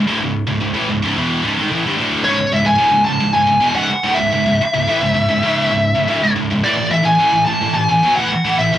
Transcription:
0.07 D2 A2
0.20 C#2 G#2
0.47 C#2 G#2
0.61 C#2 G#2
0.74 A2 E3
0.89 C#2 G#2
1.03 C#2 G#2
1.16 E2 B2 E3
1.43 C#2 G#2
1.58 G#2 D#3
1.70 A2 E3
1.85 G2 D3
1.97 D2 A2 D3
2.24 C#2 G#2 C#5
2.38 C#2 G#2
2.52 C#2 G#2 E5
2.65 C#2 G#2 G#5
2.78 D2 A2
2.91 C#2 G#2
3.05 C#2 G#2 A5
3.20 C#2 G#2
3.34 C#2 G#2 G#5
3.47 C#2 G#2
3.61 E2 B2
3.74 C#2 G#2 F#5
3.91 muted distorted electric guitar stroke
4.04 D2 A2
4.14 C#2 E5
4.19 G#2
4.32 C#2 G#2
4.46 C#2 G#2
4.61 muted distorted electric guitar stroke
4.74 C#2 G#2
4.87 A2 E3
5.02 C#2 G#2
5.14 C#2 G#2
5.28 C#2 G#2
5.42 C#2 G#2 C#3
5.70 C#2 G#2
5.95 C#2 G#2
6.07 D2 A2
6.22 C#2 G#2
6.36 C#2 G#2
6.50 C#2 G#2
6.64 A2 E3 D5
6.77 A2 E3
6.91 A2 E3 E5
7.03 A2 E3 G#5
7.19 A2 E3
7.32 A2 E3
7.46 A2 E3 A5
7.61 A2 E3
7.74 A2 E3 A5
7.85 A2 E3 G#5
8.03 B2 F#3
8.16 A2 E3 F#5
8.33 muted distorted electric guitar stroke
8.45 A2 E3
8.58 A2 E3 E5
8.72 A2 E3

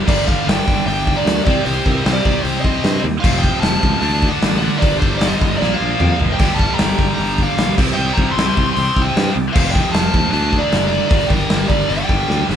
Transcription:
Already playing: D4
0.06 G1 G2 D3 G3 D4 A4 A#4 D5, kick, crash
0.25 D5 F5, kick
0.45 G1 D5 G5, snare, open hi-hat
0.68 G1, kick
0.86 G1 D5 G5, open hi-hat
1.07 kick
1.16 A#4 D5
1.25 D2, snare, open hi-hat
1.44 C2 C3 C4 G4 D5 D#5, kick
1.48 G3 C4, snare
1.65 C2 G4 C5, open hi-hat
1.86 C2 G4 A#4, kick
2.05 C2 G4 C5, snare, open hi-hat
2.13 A#4 D5
2.25 C2, kick
2.42 C2 G4 C5, open hi-hat
2.61 D#5, kick
2.65 C2 C5
2.84 G2, snare, open hi-hat
3.04 D#2
3.20 F3 C5 F5
3.24 F1 F2 C3 F3, kick, crash
3.39 D#5 G5
3.44 kick
3.59 F1 F5 A5, snare, open hi-hat
3.83 C#2, kick
3.98 D2 D3 F#5 A5
4.02 A3 D4 A4 D5, open hi-hat
4.22 kick
4.28 D5 F#5
4.42 A1, snare, open hi-hat
4.56 D5 F#5
4.77 A#4 D5
4.82 G1 G2 D3 G3 D4, kick, open hi-hat
4.96 A4 C5
5.02 G1, kick
5.14 A#4 D5
5.21 G1, snare, open hi-hat
5.26 C5 D#5
5.41 G1, kick
5.56 A#4 C5 D5
5.60 A#1 A#2 F3 A#3 F4, snare
5.74 D5 F5
5.81 A#1
6.00 F2, mid tom
6.20 F#1, floor tom
6.33 D5 G5
6.39 G1 G2 D3 G3 A3 D4, kick, open hi-hat, crash
6.54 F5 A5
6.59 kick
6.73 G5 A#5
6.78 G1, snare, open hi-hat
6.99 G1, kick
7.13 G5 A#5
7.18 G1, open hi-hat
7.38 D5, kick
7.43 F5
7.57 A#1, snare, open hi-hat
7.77 C2 C3 G3 C4 G4 D5, kick, snare, crash
7.93 D#5 G5
7.97 C2
8.13 G5 A#5
8.18 C2, kick
8.32 G5 C6
8.36 C2, snare, open hi-hat
8.57 C2, kick
8.73 G5 C6, open hi-hat
8.77 C2
8.96 C2, kick
9.02 D#5 G5
9.16 G2, snare, open hi-hat
9.36 C2
9.53 F1 F2 C3 F3 C5 F5, kick, crash
9.71 D#5 G5, kick
9.92 F1 F5 A5, snare, open hi-hat
10.14 D#2, kick
10.31 D2 D3 A3 D4 A4 F#5 A5, open hi-hat
10.35 D4 D5
10.53 kick
10.58 A#4 D5
10.72 F#1, snare, open hi-hat
10.87 A#4 D5
10.91 snare
11.06 G2 A#4 D5, open hi-hat
11.11 G1 D3 G3 A5, kick
11.27 G1 G4 A#4, kick
11.49 G1, snare, open hi-hat
11.68 G1 A#4 D5, kick
11.87 G1 G2 D3 G3 D5 G5, open hi-hat
12.09 G1, kick
12.29 D2, snare
12.49 G1, snare

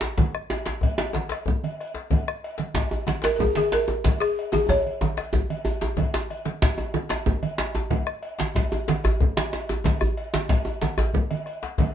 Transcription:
0.01 djembe slap
0.18 bombo low, djembe slap, djembe tone, high conga, djembe bass, low conga
0.35 bombo rim
0.50 cowbell, djembe slap
0.65 djembe slap
0.81 bombo low, cowbell, djembe slap, djembe bass, low conga
0.98 cowbell, djembe slap
1.13 bombo rim, djembe slap, djembe tone, high conga
1.29 bombo rim, cowbell, djembe slap
1.46 bombo low, high conga, djembe bass, low conga
1.64 cowbell, high conga
1.80 bombo rim, cowbell
1.94 djembe slap
2.11 bombo low, cowbell, djembe tone, high conga, djembe bass, low conga
2.28 bombo rim
2.44 cowbell
2.58 djembe slap, high conga
2.74 bombo low, cowbell, djembe slap, djembe bass, low conga
2.91 cowbell, djembe tone
3.07 bombo rim, djembe slap, djembe tone, high conga
3.22 A#4, djembe slap
3.24 bombo rim, cowbell, djembe slap
3.36 A#4, djembe tone, djembe bass
3.40 G#4, bombo low, high conga, low conga
3.55 G#4, cowbell, djembe slap, high conga
3.72 A#4, bombo rim, cowbell, djembe slap
3.88 djembe slap, djembe tone
4.04 bombo low, cowbell, djembe slap, djembe tone, high conga, djembe bass, low conga
4.20 G#4, bombo rim
4.39 cowbell
4.52 G#4, djembe slap, djembe tone, high conga
4.69 C#5, bombo rim, bombo low, cowbell, djembe slap, djembe tone, djembe bass, low conga
4.86 cowbell, high conga
5.01 djembe tone, high conga
5.17 bombo rim, cowbell, djembe slap
5.33 bombo rim, bombo low, djembe tone, djembe bass, low conga
5.50 cowbell, high conga
5.65 cowbell, djembe tone
5.81 djembe slap, djembe tone, high conga
5.97 bombo low, cowbell, djembe tone, high conga, djembe bass, low conga
6.14 bombo rim, djembe slap
6.30 bombo rim, cowbell, high conga
6.45 djembe slap, high conga
6.62 bombo low, cowbell, djembe slap, low conga, djembe bass
6.78 cowbell, djembe tone
6.94 bombo rim, high conga, djembe tone
7.09 bombo rim, cowbell, djembe slap
7.26 bombo low, high conga, djembe tone, low conga, djembe bass
7.42 cowbell, high conga
7.58 bombo rim, cowbell, djembe slap
7.75 djembe slap, djembe tone
7.90 bombo low, cowbell, djembe tone, high conga, djembe bass, low conga
8.07 bombo rim
8.23 cowbell
8.39 djembe slap, high conga
8.55 bombo low, cowbell, djembe slap, djembe bass, low conga
8.72 cowbell, djembe tone
8.88 bombo rim, djembe slap, djembe tone, high conga
9.04 bombo rim, cowbell, djembe slap, djembe bass
9.20 bombo low, djembe bass, low conga
9.37 cowbell, djembe slap, high conga
9.53 bombo rim, cowbell, djembe slap
9.69 djembe slap, djembe tone
9.84 bombo low, cowbell, djembe slap, djembe tone, high conga, djembe bass, low conga
10.01 bombo rim, djembe bass
10.17 cowbell
10.34 djembe slap, high conga
10.49 bombo low, cowbell, djembe slap, low conga, djembe bass
10.65 cowbell, djembe tone
10.82 bombo rim, djembe slap, djembe tone, high conga
10.98 bombo rim, cowbell, djembe slap, djembe bass
11.14 bombo low, high conga, djembe bass, low conga
11.31 cowbell, high conga
11.46 bombo rim, cowbell
11.63 djembe slap
11.78 bombo low, cowbell, djembe tone, high conga, djembe bass, low conga

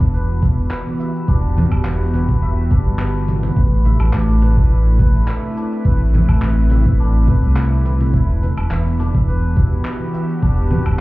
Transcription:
Already playing: E1 E3 B3 D4 E4 B4 E5
0.00 F#4, kick, cabasa
0.14 B4, cabasa
0.42 E4, kick, cabasa
0.58 cabasa
0.71 B4, clap, cabasa
0.87 muted conga
0.97 G4 E5, cabasa
1.15 cabasa
1.28 E1 D4, kick, cabasa
1.56 B4, high conga, low conga, cabasa
1.72 E1, kick, cabasa, low woodblock
1.85 E1 E4, clap, cabasa
2.01 cabasa
2.14 B4, muted conga, high conga, cabasa
2.29 kick, cabasa
2.42 E5, cabasa
2.71 D4, kick, muted conga, high conga, cabasa
2.86 G1, cabasa
2.99 B4, clap, cabasa
3.28 E4, muted conga, cabasa
3.43 muted conga, cabasa
3.56 A1 A3 B4, kick, cabasa
3.74 E4 B4
3.85 E5, high conga, cabasa
4.00 A1, cabasa, low woodblock
4.13 A1 D4, clap, cabasa
4.29 cabasa
4.42 B4, muted conga, high conga, cabasa
4.57 kick, cabasa
4.71 E4, cabasa
4.99 B4, kick, cabasa
5.15 cabasa
5.28 E5, clap, cabasa
5.42 muted conga
5.47 C4
5.57 D4, cabasa
5.72 cabasa
5.85 A1 B4, kick, cabasa
6.13 E4, high conga, low conga, cabasa
6.29 A1, kick, cabasa, low woodblock
6.42 A1 B4, clap, cabasa
6.58 cabasa
6.70 E5, muted conga, high conga, cabasa
6.86 kick, cabasa
7.00 D4, cabasa
7.27 B4, kick, muted conga, high conga, cabasa
7.43 C2, cabasa
7.57 E4, clap, cabasa
7.85 B4, muted conga, cabasa
8.01 muted conga, cabasa
8.13 E1 E3 E4, kick, cabasa
8.42 B4, high conga, cabasa
8.57 E1, cabasa, low woodblock
8.69 E1 B3 E5, clap, cabasa
8.87 cabasa
8.99 D4, muted conga, high conga, cabasa
9.15 kick, cabasa
9.28 B4, cabasa
9.43 F#4
9.56 E4, kick, cabasa
9.61 G4
9.72 cabasa
9.85 B4, clap, cabasa
10.00 muted conga
10.14 E5, cabasa
10.29 cabasa
10.42 E1 D4, kick, cabasa
10.71 B4, high conga, low conga, cabasa
10.86 E1, kick, cabasa, low woodblock

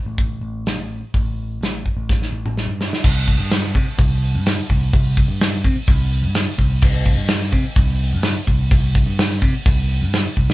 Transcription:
0.06 A1
0.18 kick, open hi-hat
0.41 A1
0.66 snare, open hi-hat
0.78 A1
1.14 A1, kick, open hi-hat
1.61 A1, snare, open hi-hat
1.86 kick
1.97 A1
2.09 kick, snare
2.22 snare
2.33 A1
2.46 mid tom
2.57 snare
2.66 G2
2.81 snare
2.93 snare
3.04 C2, kick, crash
3.27 kick, open hi-hat
3.38 G2
3.51 snare, open hi-hat
3.64 snare
3.74 C3, kick, open hi-hat
3.98 C2, kick, open hi-hat
4.22 open hi-hat
4.34 G2
4.46 snare, open hi-hat
4.70 C2, kick, open hi-hat
4.93 C2, kick, open hi-hat
5.17 kick, open hi-hat
5.28 G2
5.41 snare, open hi-hat
5.64 C3, kick, open hi-hat
5.87 C2, kick, open hi-hat
6.11 open hi-hat
6.23 G2
6.34 snare, open hi-hat
6.57 C2, kick, open hi-hat
6.82 C2, kick, crash
7.05 kick, open hi-hat
7.15 G2
7.28 snare, open hi-hat
7.41 snare
7.51 C3, kick, open hi-hat
7.75 C2, kick, open hi-hat
7.99 open hi-hat
8.13 G2
8.23 snare, open hi-hat
8.47 C2, kick, open hi-hat
8.71 C2, kick, open hi-hat
8.95 kick, open hi-hat
9.06 G2
9.18 snare, open hi-hat
9.30 snare
9.41 C3, kick, open hi-hat
9.66 C2, kick, open hi-hat
9.89 open hi-hat
10.01 G2
10.13 snare, open hi-hat
10.37 C2, kick
10.50 snare

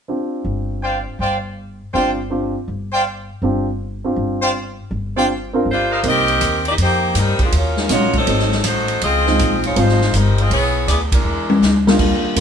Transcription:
0.08 C4 D4 F4 G4
0.45 G1
0.82 C5 D5 F5 G5
1.19 G1 C5 D5 F5 G5
1.94 G1 C4 D4 F4 G4 C5 D5 F5 G5
2.30 C4 D4 F4 G4
2.68 G1
2.92 C5 D5 F5 G5
3.42 G1 C4 D4 F4 G4
4.04 C4 D4 F4 G4
4.16 G1
4.41 C5 D5 F5 G5
4.91 G1
5.16 C4 D4 F4 G4 C5 D5 F5 G5
5.53 C4 D4 F4 A#4
5.65 G1
5.72 G3 D4 F4 C5
5.91 A#4 C5 D#5 F5
6.03 C2 A#3 C4 D#4 G4, kick, ride
6.08 C4 G4 A#4 D#5
6.28 ride
6.41 D#2, kick, hi-hat pedal, ride
6.65 A#3 D#4 G4 D5, ride
6.78 F2, kick, ride
6.82 A#3 D#4 G4 C5
7.15 G2 G3 C4 D#4 A#4, kick, hi-hat pedal, ride
7.39 F3 D4 G#4, muted upright bass stroke, kick, ride
7.43 A#3
7.52 D#2, kick, ride
7.56 F#3 C#4 F4 A#4
7.77 snare
7.89 A#1 F#3 G#3 A#3 C#4 F4 F#4 C#5, kick, snare, hi-hat pedal, ride
8.13 D#4, kick, ride
8.18 F#3 C4 A4
8.26 G#1 F#3 A3 C4 D#4, kick, ride
8.39 snare
8.52 snare
8.64 A1 A3 D#4 C5, kick, hi-hat pedal, ride
8.68 F#4
8.88 ride
9.02 C#2 C4 F4 G#4 D#5, kick, ride
9.26 F3 G#3 C4 D#4, snare
9.39 A#1, kick, hi-hat pedal, ride
9.64 G#3 D#4 F4 C#5, ride
9.76 G#1 F3 G3 C4 D#4 F4, kick, ride
9.80 G#3 F4 C5
9.89 snare
10.01 snare
10.13 G1 G3 C4 D#4 A#4, kick, hi-hat pedal, ride
10.38 C4 F4 G#4 D#5, ride
10.50 B1 B3 E4 G#4 C#5, kick, ride
10.87 D2 B3 E4 G#4 D5, kick, hi-hat pedal, ride
11.12 G#3 D4 E4 A#4, kick, ride
11.24 E2
11.50 high tom
11.61 C#2, snare, hi-hat pedal
11.87 G3 A#3 D4 F4, snare
11.99 D#2, kick, crash
12.36 F2 G3 A#3 D4, kick, hi-hat pedal, ride

